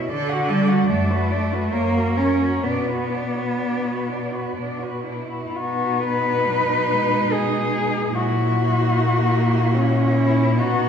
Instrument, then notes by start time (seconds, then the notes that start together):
cello
Already playing: E4
0.10 D3 A4 D5
0.29 F#4 F#5
0.48 G3 A4 D5
0.69 F#4 F#5
0.89 F#2 A3 D4 D5
1.10 F#4 B4
1.30 D4 D5
1.53 F#4 B4
1.72 F#2 A#3 A#4 C#5
1.94 F#4 A#4
2.15 C#4 A#4
2.20 C#5
2.39 F#4 A#4
2.62 B2 B3 D4 D5
2.88 F#4 B4
3.09 D4
3.16 D5
3.35 F#4 B4
3.59 B2 D4 D5
3.85 F#4 B4
4.08 D4
4.12 D5
4.32 F#4 B4
4.56 B2 D4
4.62 D5
4.79 F#4 B4
5.03 D4 E4
5.28 F#4
5.53 B2 B3 D#4 F#4
6.04 B4
6.48 F#3
6.91 G#3
7.32 G#4
8.13 A#2 F#3 E4 F#4
8.96 A#3
9.74 C#4
10.15 E4
10.55 B2 B3 D#4
10.59 F#4